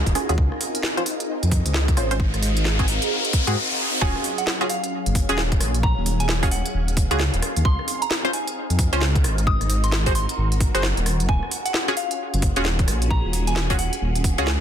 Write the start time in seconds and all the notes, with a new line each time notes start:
Already playing: C#4 D#4 F4 F#4 G#4 A#4
0.06 D#1, kick, closed hi-hat
0.15 C#4 F4 F#4 G#4, cross-stick, open hi-hat
0.29 D#2 C#4 F4 F#4 G#4, closed hi-hat
0.38 C#2 C4 D#4, kick, riser
0.52 cross-stick
0.61 open hi-hat
0.75 closed hi-hat
0.83 snare
0.91 G#4
0.97 C#4 F4 C5, closed hi-hat
1.06 D#5, open hi-hat
1.20 F5, closed hi-hat
1.43 F2, closed hi-hat
1.51 kick, open hi-hat
1.66 C#2, closed hi-hat
1.74 snare
1.88 kick, closed hi-hat
1.97 G#1 C#4 F4 C5, cross-stick, open hi-hat
2.11 C#4 F4 C5, closed hi-hat
2.20 F#4 A#4, kick
2.34 G#1, cross-stick, closed hi-hat
2.43 open hi-hat
2.57 closed hi-hat
2.65 snare
2.79 C4 F#4 G#4, kick, closed hi-hat
2.88 open hi-hat
3.02 A#5 C6, closed hi-hat
3.25 closed hi-hat
3.33 kick, open hi-hat
3.47 G#2 C4 F#4 G#4, closed hi-hat
4.01 D#1 F#3 C#4 F4 F#4 G#4 F5 G#5, kick
4.16 cross-stick
4.24 open hi-hat
4.38 F#5, closed hi-hat
4.47 snare
4.61 C#4 F4 F#4 G#4, closed hi-hat
4.69 F5, open hi-hat
4.84 closed hi-hat
5.06 F#1, closed hi-hat
5.15 kick, open hi-hat
5.29 D#1 C#4 F4 F#4 G#4, closed hi-hat
5.38 snare
5.52 kick, closed hi-hat
5.60 A#1, cross-stick, open hi-hat
5.74 closed hi-hat
5.83 A#5, kick
5.97 D#1
6.06 open hi-hat
6.20 G#5, closed hi-hat
6.29 snare
6.43 C#4 F4 F#4 G#4, kick, open hi-hat
6.51 F#5, open hi-hat
6.66 closed hi-hat
6.74 D#1
6.88 closed hi-hat
6.97 kick, open hi-hat
7.11 C#2 C#4 F4 F#4 G#4, closed hi-hat
7.20 snare
7.34 D#1, closed hi-hat
7.42 cross-stick, open hi-hat
7.56 D#2, closed hi-hat
7.65 C#2 C4 D#4 C6, kick
7.79 cross-stick
7.88 open hi-hat
8.02 A#5, closed hi-hat
8.11 snare
8.25 C#4 F4 C5, closed hi-hat
8.33 G#5, open hi-hat
8.47 closed hi-hat
8.70 F2, closed hi-hat
8.79 kick, open hi-hat
8.93 C#2 C#4 F4 C5, closed hi-hat
9.01 snare
9.15 kick, closed hi-hat
9.24 G#1, cross-stick, open hi-hat
9.38 closed hi-hat
9.47 F#4 A#4 D#6, kick
9.61 G#1, cross-stick, closed hi-hat
9.70 open hi-hat
9.84 C6, closed hi-hat
9.92 snare
10.06 F#4 G#4 C5, kick, open hi-hat
10.15 C6, open hi-hat
10.29 closed hi-hat
10.38 G#1
10.52 closed hi-hat
10.61 kick, open hi-hat
10.74 F#1 F#4 G#4 C5, closed hi-hat
10.83 snare
10.97 D#1, closed hi-hat
11.06 cross-stick, open hi-hat
11.20 F#1, closed hi-hat
11.29 D#1 C#4 F4 G#4 G#5, kick
11.43 cross-stick
11.51 open hi-hat
11.65 F#5, closed hi-hat
11.74 snare
11.88 C#4 F4 F#4 G#4, closed hi-hat
11.97 F5, open hi-hat
12.11 closed hi-hat
12.34 F#1, closed hi-hat
12.42 kick, open hi-hat
12.56 D#1 C#4 F4 F#4 G#4, closed hi-hat
12.65 snare
12.79 kick, closed hi-hat
12.88 A#1, cross-stick, open hi-hat
13.02 closed hi-hat
13.10 A#5, kick
13.25 D#1
13.33 open hi-hat
13.47 G#5, closed hi-hat
13.56 snare
13.70 C#4 F4 F#4 G#4, kick, open hi-hat
13.79 F#5, open hi-hat
13.93 closed hi-hat
14.01 D#1
14.15 closed hi-hat
14.24 kick, open hi-hat
14.38 C#2 C#4 F4 F#4 G#4, closed hi-hat
14.47 snare